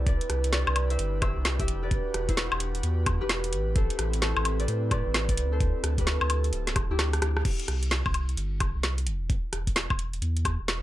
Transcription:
Already playing: sub bass C2, analog synth pad E4
0.06 analog synth pad D4 G4 B4, harp B4 D5, kick, closed hi-hat
0.21 closed hi-hat
0.30 sub bass C2, cross-stick, closed hi-hat
0.44 closed hi-hat
0.53 harp B4 D5, snare, closed hi-hat
0.67 sub bass C2, high woodblock
0.76 closed hi-hat, high woodblock
0.90 harp C5 E5, closed hi-hat
0.99 sub bass G1, closed hi-hat
1.22 harp C5 E5, kick, cross-stick, closed hi-hat, high woodblock
1.36 sub bass C2
1.45 snare, closed hi-hat
1.59 harp G4 E5, kick, closed hi-hat
1.68 sub bass E1, analog synth pad F#4, closed hi-hat
1.83 harp B4 D5
1.91 kick, closed hi-hat
2.14 sub bass E1, cross-stick, closed hi-hat
2.29 harp E4 C5, kick, closed hi-hat
2.37 snare, closed hi-hat
2.52 sub bass E1, high woodblock
2.60 closed hi-hat
2.75 closed hi-hat
2.83 sub bass E2, closed hi-hat
3.06 kick, cross-stick, closed hi-hat, high woodblock
3.21 sub bass E1, harp G4 B4
3.29 snare, closed hi-hat
3.44 closed hi-hat
3.53 sub bass A1, analog synth pad C4 E4, closed hi-hat
3.76 harp A4 C5, kick, closed hi-hat
3.90 closed hi-hat
3.99 sub bass A1, cross-stick, closed hi-hat
4.13 closed hi-hat
4.22 harp A4 C5, snare, closed hi-hat
4.36 sub bass A1, high woodblock
4.45 closed hi-hat, high woodblock
4.59 harp B4 D5, closed hi-hat
4.68 sub bass A2, closed hi-hat
4.91 harp B4 D5, kick, cross-stick, closed hi-hat, high woodblock
5.06 sub bass A1
5.14 snare, closed hi-hat
5.29 harp B4 D5, kick, closed hi-hat
5.37 sub bass D2, closed hi-hat
5.52 harp A4 C5
5.60 analog synth pad A4, kick, closed hi-hat
5.83 sub bass D2, cross-stick, closed hi-hat
5.98 harp G4 B4, kick, closed hi-hat
6.07 snare, closed hi-hat
6.21 sub bass D2, high woodblock
6.30 closed hi-hat, high woodblock
6.44 closed hi-hat
6.53 sub bass D1, closed hi-hat
6.67 snare, closed hi-hat
6.76 kick, cross-stick, closed hi-hat, high woodblock
6.90 sub bass D2, harp E4 G4
6.99 cross-stick, snare, closed hi-hat
7.13 cross-stick, closed hi-hat
7.22 sub bass D2, cross-stick, closed hi-hat
7.37 cross-stick
7.45 kick, closed hi-hat, crash
7.59 closed hi-hat
7.68 sub bass C2, cross-stick, closed hi-hat
7.83 closed hi-hat
7.91 snare, closed hi-hat
8.06 sub bass C2, kick, high woodblock
8.14 closed hi-hat, high woodblock
8.29 closed hi-hat
8.37 sub bass G1, closed hi-hat
8.60 kick, cross-stick, closed hi-hat, high woodblock
8.75 sub bass C2
8.83 snare, closed hi-hat
8.98 closed hi-hat
9.06 sub bass E1, closed hi-hat
9.30 kick, closed hi-hat
9.53 sub bass E1, cross-stick, closed hi-hat
9.67 kick, closed hi-hat
9.76 snare, closed hi-hat
9.90 sub bass E1, kick, high woodblock
9.99 closed hi-hat
10.13 closed hi-hat
10.22 sub bass E2, closed hi-hat
10.37 closed hi-hat
10.45 kick, cross-stick, closed hi-hat, high woodblock
10.59 sub bass E1
10.68 snare, closed hi-hat

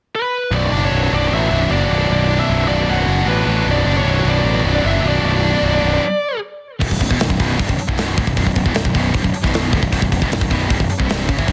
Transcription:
0.15 lead electric guitar B4
0.51 picked electric bass B0, distorted electric guitar B1, lead electric guitar D5
0.72 picked electric bass F#1, distorted electric guitar D4
0.85 lead electric guitar C#5
0.92 picked electric bass B0, distorted electric guitar F#3
1.11 picked electric bass B0, distorted electric guitar B2, lead electric guitar D5
1.30 picked electric bass A1, distorted electric guitar F#2 F#3, lead electric guitar E5
1.50 picked electric bass B0, distorted electric guitar F#3 D4
1.69 picked electric bass F#1, distorted electric guitar F#3 D4, lead electric guitar D5
1.90 picked electric bass B0, distorted electric guitar B2
2.09 picked electric bass B0, distorted electric guitar B1, lead electric guitar D5
2.29 distorted electric guitar D4
2.40 lead electric guitar E5
2.48 picked electric bass B0, distorted electric guitar F#3
2.68 picked electric bass B0, distorted electric guitar B2, lead electric guitar D5
2.88 picked electric bass B0, distorted electric guitar F#2 F#3, lead electric guitar F#5
3.06 picked electric bass F#1, distorted electric guitar F#3 D4
3.26 picked electric bass A1, distorted electric guitar F#3 D4, lead electric guitar B4
3.47 picked electric bass A1, distorted electric guitar B2
3.66 picked electric bass B0, distorted electric guitar B1
3.71 lead electric guitar D5
3.85 picked electric bass F#1, distorted electric guitar D4
3.97 lead electric guitar C#5
4.05 picked electric bass B0, distorted electric guitar F#3
4.25 picked electric bass B0, distorted electric guitar B2, lead electric guitar D5
4.44 picked electric bass A1, distorted electric guitar F#2 F#3
4.64 picked electric bass B0, distorted electric guitar F#3 D4
4.83 picked electric bass F#1, distorted electric guitar F#3 D4, lead electric guitar E5
5.03 picked electric bass B0, distorted electric guitar B2
5.08 lead electric guitar D5
5.23 picked electric bass B0, distorted electric guitar B1
5.43 distorted electric guitar D4
5.63 picked electric bass B0, distorted electric guitar F#3
5.82 picked electric bass B0, distorted electric guitar B2
6.81 picked electric bass B0, distorted electric guitar B1 F#2, kick, crash
6.91 picked electric bass B0, distorted electric guitar B1 F#2, kick
7.00 picked electric bass B0, distorted electric guitar B1 F#2, kick, open hi-hat
7.09 picked electric bass E1, distorted electric guitar E2 B2, kick
7.20 picked electric bass B0, distorted electric guitar B1 F#2, snare, open hi-hat
7.29 picked electric bass B0, distorted electric guitar B1 F#2, kick
7.39 picked electric bass B0, distorted electric guitar B1 F#2 B2, kick, open hi-hat
7.58 picked electric bass C1, distorted electric guitar C2 G2, kick, open hi-hat
7.69 picked electric bass B0, distorted electric guitar B1 F#2, kick
7.77 muted overdriven electric guitar stroke, muted distorted electric guitar stroke, muted picked electric bass stroke, open hi-hat
7.88 picked electric bass B0, distorted electric guitar B1 F#2 B2, kick
7.98 snare, open hi-hat
8.17 picked electric bass D1, distorted electric guitar D2 A2, kick, open hi-hat
8.27 picked electric bass B0, distorted electric guitar B1 F#2, kick
8.37 picked electric bass B0, distorted electric guitar B1 F#2, kick, open hi-hat
8.46 picked electric bass B0, distorted electric guitar B1 F#2, kick
8.56 picked electric bass B0, distorted electric guitar B1 F#2, kick, open hi-hat
8.65 picked electric bass E1, distorted electric guitar E2 B2, kick
8.75 picked electric bass B0, distorted electric guitar B1 F#2, snare, open hi-hat
8.85 picked electric bass B0, distorted electric guitar B1 F#2, kick
8.94 picked electric bass B0, distorted electric guitar B1 F#2 B2, kick, open hi-hat
9.13 picked electric bass C1, distorted electric guitar C2 G2, kick, open hi-hat
9.23 picked electric bass B0, distorted electric guitar B1 F#2, kick
9.31 muted overdriven electric guitar stroke, muted distorted electric guitar stroke, muted picked electric bass stroke, open hi-hat
9.43 picked electric bass B0, distorted electric guitar B1 F#2 B2, kick, snare
9.54 snare, open hi-hat
9.72 picked electric bass D1, distorted electric guitar D2 A2, kick, open hi-hat
9.82 picked electric bass B0, distorted electric guitar B1 F#2, kick
9.92 picked electric bass B0, distorted electric guitar B1 F#2, kick, open hi-hat
10.01 picked electric bass B0, distorted electric guitar B1 F#2, kick
10.12 picked electric bass B0, distorted electric guitar B1 F#2, kick, open hi-hat
10.21 picked electric bass E1, distorted electric guitar E2 B2, kick
10.31 picked electric bass B0, distorted electric guitar B1 F#2, snare, open hi-hat
10.41 picked electric bass B0, distorted electric guitar B1 F#2, kick
10.50 picked electric bass B0, distorted electric guitar B1 F#2 B2, kick, open hi-hat
10.70 picked electric bass C1, distorted electric guitar C2 G2, kick, open hi-hat
10.79 picked electric bass B0, distorted electric guitar B1 F#2, kick
10.89 muted overdriven electric guitar stroke, muted distorted electric guitar stroke, muted picked electric bass stroke, open hi-hat
10.98 picked electric bass C1, distorted electric guitar C2 G2 C3, kick
11.09 snare, open hi-hat
11.28 picked electric bass F#1, distorted electric guitar F#2 C#3, kick, open hi-hat
11.38 picked electric bass A1, distorted electric guitar A2 E3, kick
11.48 picked electric bass B0, distorted electric guitar B1 F#2, kick, open hi-hat

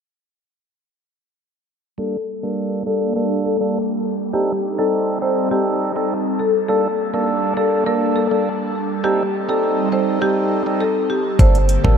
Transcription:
1.98 tonewheel organ G3 A#3 D4 A4, analog synth pad G3 A#3 D4 A4, marimba A4
2.43 tonewheel organ G3 A#3 D4 A4, marimba A#4
2.86 tonewheel organ G3 A#3 D4 A4, marimba A4
3.16 tonewheel organ G3 A#3 D4 A4, marimba A#4
3.45 marimba A4
3.61 tonewheel organ G3 A#3 D4 A4
4.33 tonewheel organ G3 C4 D#4 A4, analog synth pad C4 D#4, marimba G4
4.78 tonewheel organ G3 C4 D#4 A4, marimba A4
5.21 tonewheel organ G3 C4 D#4 A4, marimba C5
5.51 tonewheel organ G3 C4 D#4 A4, marimba G4
5.96 tonewheel organ G3 C4 D#4 A4
6.39 marimba A4
6.68 tonewheel organ G3 A#3 D4 A4, analog synth pad G3 A#3 D4, marimba A4
7.14 tonewheel organ G3 A#3 D4 A4, marimba A#4
7.57 tonewheel organ G3 A#3 D4 A4, marimba A4
7.86 tonewheel organ G3 A#3 D4 A4, marimba A#4
8.16 marimba A4
8.31 tonewheel organ G3 A#3 D4 A4
9.04 tonewheel organ G3 C4 D#4 A4, analog synth pad C4 D#4, marimba G4
9.49 tonewheel organ G3 C4 D#4 A4, marimba A4
9.92 tonewheel organ G3 C4 D#4 A4, marimba C5
10.21 tonewheel organ G3 C4 D#4 A4, marimba G4
10.66 tonewheel organ G3 C4 D#4 A4
10.81 marimba A4
11.10 marimba G4
11.39 808-style bass G1, analog synth pad D3 A#3 G4 A4, tonewheel organ G3 A#3 D4 A4, marimba C5, kick, closed hi-hat
11.55 closed hi-hat
11.69 closed hi-hat
11.84 808-style bass A1, tonewheel organ G3 A#3 D4 A4, marimba A#4, kick

